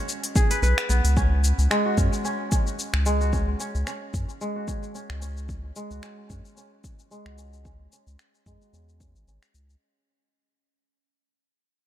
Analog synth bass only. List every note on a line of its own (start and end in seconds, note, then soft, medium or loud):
0.62 0.74 B1 medium
0.89 1.01 B1 medium
1.04 1.53 C#2 medium
1.58 1.68 C#2 medium
1.98 2.09 F#2 medium
2.93 3.55 C#2 medium
3.75 3.84 C#2 medium
4.14 4.25 F#2 medium
5.10 5.71 C#2 medium
5.91 6.00 C#2 medium
6.30 6.41 F#2 medium
7.26 7.87 C#2 medium
8.07 8.16 C#2 medium
8.46 8.58 F#2 medium
8.73 9.17 E2 medium
9.15 9.25 G#1 loud
9.27 9.39 G#1 medium
9.54 9.76 C#2 medium